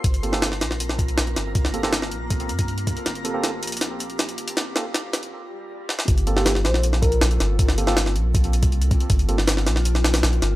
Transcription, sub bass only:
\new Staff \with { instrumentName = "Sub bass" } { \clef bass \time 4/4 \key g \minor \tempo 4 = 159 g,,4. bes,,4. bes,,8 g,,8~ | g,,4. bes,,4 g,4~ g,16 r16 | g,,4. bes,,4. bes,,8 g,,8~ | g,,4. bes,,8 r2 |
g,,4. bes,,4. bes,,8 g,,8~ | g,,4. bes,,4~ bes,,16 c,4 r16 | g,,4. bes,,4. bes,,8 g,,8 | }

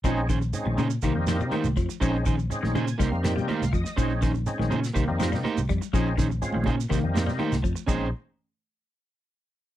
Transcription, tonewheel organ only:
\new Staff \with { instrumentName = "Tonewheel organ" } { \time 4/4 \key bes \dorian \tempo 4 = 123 << { r1 | r4. aes''8 f''8 g''8 f''8 ees''8 | r1 | r1 |
r1 | } \\ { <aes c' des' ees'>8 r8 <aes c' des' ees'>8 r8. <g bes c' ees'>8. r4 | <aes c' des' ees'>8 r8 <aes c' des' ees'>8 r8. <g bes c' ees'>8. r4 | <aes c' des' ees'>8 r8 <aes c' des' ees'>8 r8. <g bes c' ees'>8. r4 | <aes c' des' ees'>8 r8 <aes c' des' f'>8 r8. <g bes c' ees'>8. r4 |
<aes c' des' ees'>8 r2. r8 | } >> }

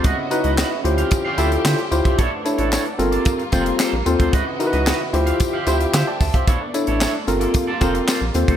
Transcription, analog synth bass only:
\new Staff \with { instrumentName = "Analog synth bass" } { \clef bass \time 4/4 \key d \lydian \tempo 4 = 112 cis,16 r8 cis,8 r16 d,8 r8 d,8 d16 r16 d,16 c,16 | b,,16 r8 a,,8 r16 g,,8 r8 f,,8 r16 bes,,16 dis,16 d,16 | cis,16 r8 cis,8 r16 d,8 r8 d,8 d16 r16 d,16 c,16 | b,,16 r8 a,,8 r16 g,,8 r8 f,,8 r16 bes,,16 dis,16 d,16 | }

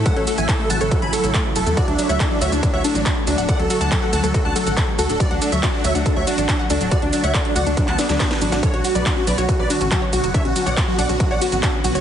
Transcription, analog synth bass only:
\new Staff \with { instrumentName = "Analog synth bass" } { \clef bass \time 4/4 \key d \lydian \tempo 4 = 140 r16 a,,16 r16 a,,16 r8 a,,16 a,,16 r16 a,,16 r16 a,,16 r8 fis,,16 e,16 | r16 d,16 r16 d,16 r8 d,16 d,16 r16 d,16 r16 a,,16 r8 d,16 d,,16 | r16 d,16 r16 d,16 r8 d,16 d,16 r16 d,16 r16 a,,16 r8 d,16 d,,16 | r16 d,16 r16 d,16 r8 d,16 d,16 r16 d,16 r16 a,,16 r8 d,16 d,,16 |
r16 d,16 r16 d,16 r8 d,16 d,16 r16 d,16 r16 d,16 r8 a,,16 a,,16 | r16 b,,16 r16 b,,16 r8 b,,16 b,,16 r16 b,,16 r16 a,,16 r8 b,,16 fis,,16 | r16 b,,16 r16 b,,16 r8 b,,16 b,,16 r16 b,,16 r16 a,,16 r8 b,,16 fis,,16 | }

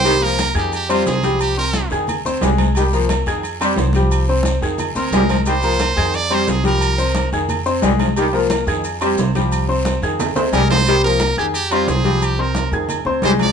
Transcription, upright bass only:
\new Staff \with { instrumentName = "Upright bass" } { \clef bass \time 4/4 \key f \dorian \tempo 4 = 178 c,4. f,4. c,4~ | c,4. f,4 d,8 c,4~ | c,4. f,4. c,4~ | c,4. f,4 d,8 c,4~ |
c,4. f,4. c,4~ | c,4. f,4. c,4~ | c,4. f,4. c,4~ | c,4. f,4 d,8 c,4~ |
c,4. f,4. c,4~ | c,4. f,4 d,8 c,4 | }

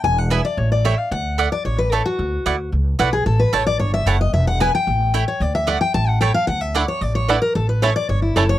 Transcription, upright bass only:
\new Staff \with { instrumentName = "Upright bass" } { \clef bass \time 4/4 \key a \mixolydian \tempo 4 = 224 e,,2 a,,2 | d,2 a,,2 | d,4 d,4 cis,4 b,,4 | a,,4 a,,4 g,,4 fis,,4 |
e,,2 a,,2 | d,2 a,,2 | d,2 a,,2 | a,,2 g,,4 fis,,4 | }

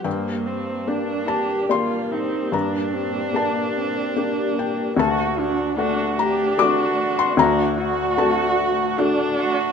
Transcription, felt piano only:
\new Staff \with { instrumentName = "Felt piano" } { \time 3/4 \key g \minor \tempo 4 = 74 << { g''4. a''8 c'''4 | bes''4 a''4 r8 g''8 | a''4. bes''8 d'''8. c'''16 | bes''4 a''4 r4 | } \\ { g,4 <bes d' g'>4 <bes g' d''>4 | g,4 <bes d' g'>4 <bes d' g'>4 | d,4 <a d' fis''>4 <a d' fis'>4 | d,4 <a d' fis'>4 <a d' fis'>4 | } >> }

